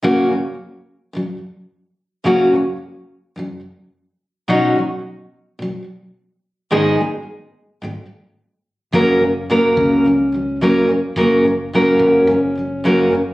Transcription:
X:1
M:4/4
L:1/8
Q:1/4=108
K:F#
V:1 name="Steel-string acoustic guitar" clef=bass
[F,,C,F,A,CF] [F,,C,F,] z2 [F,,C,F,] z3 | [F,,C,F,A,CF] [F,,C,F,] z2 [F,,C,F,] z3 | [B,,F,CDF] [B,,F,] z2 [B,,F,] z3 | [G,,D,G,B,DG] [G,,D,G,] z2 [G,,D,G,] z3 |
[F,,C,F,A,CA] [F,,C,F,] [F,,C,F,A,CA]2 [F,,C,F,] [F,,C,F,] [F,,C,F,A,CA] [F,,C,F,] | [F,,C,F,A,CA] [F,,C,F,] [F,,C,F,A,CA]2 [F,,C,F,] [F,,C,F,] [F,,C,F,A,CA] [F,,C,F,] |]
V:2 name="Fretless electric bass" clef=bass
z8 | z8 | z8 | z8 |
F,,,3 C,,4 z | F,,,3 F,,, F,,,4 |]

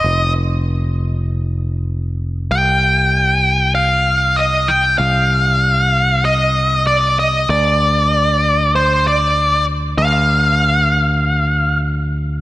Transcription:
X:1
M:4/4
L:1/8
Q:1/4=97
K:Cdor
V:1 name="Lead electric guitar"
e z6 z | g4 f2 e g | f4 e2 d e | d4 c d2 z |
f6 z2 |]
V:2 name="Picked electric bass" clef=bass
F,,,8 | C,,8 | C,,8 | D,,8 |
D,,8 |]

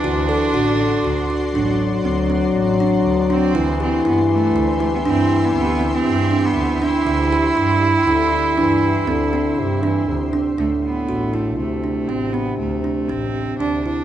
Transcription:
X:1
M:7/4
L:1/16
Q:1/4=120
K:Dmix
V:1 name="Ambient pad"
[Fdc']24- [Fdc']4 | [Gec']24- [Gec']4- | [Gec']24- [Gec']4 | z24 z4 |]
V:2 name="Kalimba"
F2 A2 F4 F2 F2 D4 C2 C4 D4 D2 | E2 G2 E4 E2 E2 D4 C2 C4 D4 D2 | E2 G2 E4 E2 z2 D4 C2 C4 D4 D2 | D4 F2 E4 D2 C2 C4 D2 C4 D2 E2 |]
V:3 name="Cello"
D12- D2 z12 C2- | C2 C2 B,2 A,4 A, B, C3 B, B,3 C4 B,3 E2- | E24 z4 | A,2 B,4 A,2 A,4 C2 B,2 A,4 C4 D2 D2 |]
V:4 name="French horn" clef=bass
E,4 D,6 z2 F,16 | E,24- E,4- | E,6 z2 D,4 E,4 D,4 C,2 E,2 C,4 | A,,8 C,16- C,4 |]
V:5 name="Double bass" clef=bass
D,,4 A,,,4 D,,2 z2 A,,,4 D,,4 A,,,4 D,,2 z2 | D,,4 G,,4 D,,2 z2 G,,4 D,,4 G,,4 D,,2 z2 | D,,4 G,,4 D,,2 z2 G,,4 D,,4 G,,4 D,,2 z2 | D,,2 z2 A,,,4 D,,4 A,,,4 D,,2 z2 A,,,4 D,,4 |]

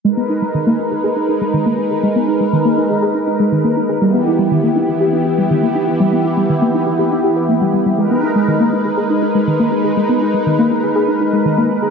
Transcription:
X:1
M:4/4
L:1/16
Q:1/4=121
K:G#m
V:1 name="Analog synth pad"
[G,DAB]16- | [G,DAB]16 | [E,B,E=G]16- | [E,B,E=G]16 |
[G,DAB]16- | [G,DAB]16 |]
V:2 name="Synth arpeggio sound"
G, B, D G, D, A, D G G D D G, D, A, D G | G, B, D G, D, A, D G G D D G, D, A, D G | =G, B, E G, D, A, D =G G D E G, D, A, D G | =G, B, E G, D, A, D =G G D G B A, G, G, G, |
G, B, D G, D, A, D G G D D G, D, A, D G | G, B, D G, D, A, D G G D D G, D, A, D G |]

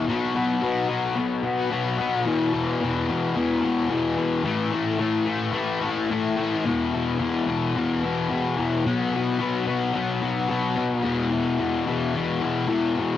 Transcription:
X:1
M:4/4
L:1/8
Q:1/4=109
K:Bdor
V:1 name="Distorted electric guitar" clef=bass
[B,,F,B,] [F,B,] [B,,F,B,] [F,B,] [B,,F,B,] [F,B,] [B,,F,B,] [F,B,] | [E,,B,,E,] [B,,E,] [E,,B,,E,] [B,,E,] [E,,B,,E,] [B,,E,] [E,,B,,E,] [B,,E,] | [A,,E,A,] [E,A,] [A,,E,A,] [E,A,] [A,,E,A,] [E,A,] [A,,E,A,] [E,A,] | [E,,B,,E,] [B,,E,] [E,,B,,E,] [B,,E,] [E,,B,,E,] [B,,E,] [E,,B,,E,] [B,,E,] |
[B,,F,B,] [F,B,] [B,,F,B,] [F,B,] [B,,F,B,] [F,B,] [B,,F,B,] [F,B,] | [E,,B,,E,] [B,,E,] [E,,B,,E,] [B,,E,] [E,,B,,E,] [B,,E,] [E,,B,,E,] [B,,E,] |]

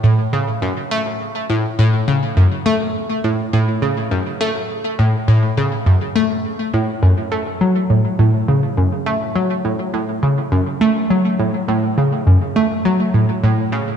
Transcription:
X:1
M:4/4
L:1/8
Q:1/4=103
K:F#m
V:1 name="Synth arpeggio sound" clef=bass
A,, C, F,, A, z A,, A,, C, | F,, A, z A,, A,, C, F,, A, | z A,, A,, C, F,, A, z A,, | F,, A, F, A,, A,, C, F,, A, |
F, A,, A,, C, F,, A, F, A,, | A,, C, F,, A, F, A,, A,, C, |]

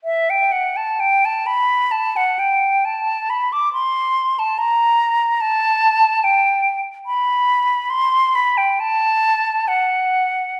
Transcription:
X:1
M:4/4
L:1/16
Q:1/4=68
K:Ador
V:1 name="Flute"
e g f a g a b2 a f g2 a2 b d' | c'3 a ^a4 =a4 g3 z | b4 c'2 b g a4 f4 |]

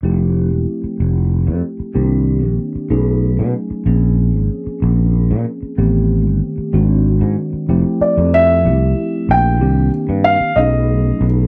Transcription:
X:1
M:6/8
L:1/16
Q:3/8=63
K:Bblyd
V:1 name="Grand piano"
z12 | z12 | z12 | z12 |
z2 d2 e6 g2- | g2 z2 f2 ^d4 z2 |]
V:2 name="Tine electric piano"
[F,A,CEG]12 | [_E,B,CDG]6 [^F,A,^C^D^G]6 | [F,B,C_D_A]12 | [_E,A,=B,CG]6 [E,_A,CD_G]6 |
[F,A,CEG]6 [F,A,CEG]6 | [_E,B,CDG]6 [^F,A,^C^D^G]6 |]
V:3 name="Fretless electric bass" clef=bass
F,,,3 E,,, z2 F,,,3 F,, z2 | C,,3 B,,, z2 =B,,,3 =B,, z2 | B,,,3 _A,,, z2 B,,,3 B,, z2 | A,,,3 G,,, z2 _A,,,3 _A,, z2 |
F,,, z2 F,,3 C,,2 z2 B,,,2 | C,,2 z G,,2 z =B,,,4 B,,,2 |]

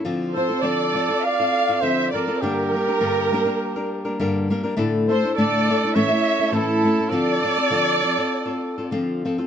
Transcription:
X:1
M:4/4
L:1/16
Q:"Swing" 1/4=102
K:Dm
V:1 name="Violin section"
z2 c2 d4 f4 e2 d2 | B12 z4 | z2 c2 d4 e4 A4 | d12 z4 |]
V:2 name="Trumpet"
z2 A2 A4 d4 c2 B2 | G12 z4 | z2 A2 A4 ^c4 E4 | A12 z4 |]
V:3 name="Nylon-string guitar"
[D,F,CFA]2 [F,CFA] [CFA] [D,F,CFA]2 [F,CFA] [CFA]2 [CFA]2 [CFA] [D,F,CFA]2 [F,CFA] [CFA] | [G,,D,G,B,DB]2 [G,B,DB] [G,B,DB] [G,,D,G,B,DB]2 [G,B,DB] [G,B,DB]2 [G,B,DB]2 [G,B,DB] [G,,D,G,B,DB]2 [G,B,DB] [G,B,DB] | [A,,D,A,DEA]2 [A,DEA] [A,DEA] [A,,D,A,DEA]2 [A,DEA] [A,DEA] [A,,E,A,^CEA] [A,CEA]2 [A,CEA] [A,,E,A,CEA]2 [A,CEA] [A,CEA] | [D,F,CFA]2 [F,CFA] [CFA] [D,F,CFA]2 [F,CFA] [CFA]2 [CFA]2 [CFA] [D,F,CFA]2 [F,CFA] [CFA] |]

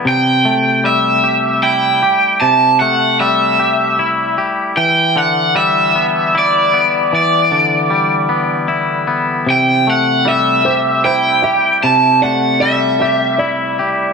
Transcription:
X:1
M:3/4
L:1/8
Q:1/4=76
K:Em
V:1 name="Overdriven electric guitar"
g2 e2 g2 | a f e3 z | g f e2 d2 | d4- d z |
g f e2 g2 | a f e3 z |]
V:2 name="Felt piano"
z6 | z6 | z6 | z6 |
z2 e c c e- | e d d e d2 |]
V:3 name="Clean electric guitar"
C, A, G, G E G | C, A, G, G E G | E, D, G, B, E B, | E, D, G, B, E B, |
C, A, G, G E G | C, A, G, G E G |]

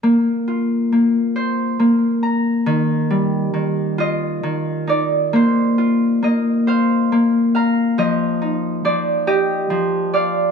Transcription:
X:1
M:6/8
L:1/8
Q:3/8=46
K:Eblyd
V:1 name="Harp"
z6 | z3 e2 d | c2 e f2 f | e2 d e2 d |]
V:2 name="Harp"
B, F B, c B, b | E, G, E, F E, E | B, F B, c B, b | F, E F, G F, f |]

